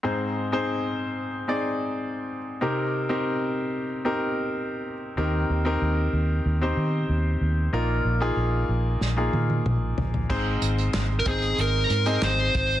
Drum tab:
CC |----------------|----------------|----------------|----------------|
HH |----------------|----------------|----------------|----------------|
CP |----------------|----------------|----------------|----------------|
SD |----------------|----------------|----------------|--------o-------|
T1 |----------------|----------------|----------------|----------oo----|
T2 |----------------|----------------|----------------|------------o---|
FT |----------------|----------------|----------------|--------------oo|
BD |----------------|----------------|----------------|----------------|

CC |x---------------|
HH |--xxx-xxx-xxxxxx|
CP |----x-------x---|
SD |----o-------o---|
T1 |----------------|
T2 |----------------|
FT |----------------|
BD |o-----o-------o-|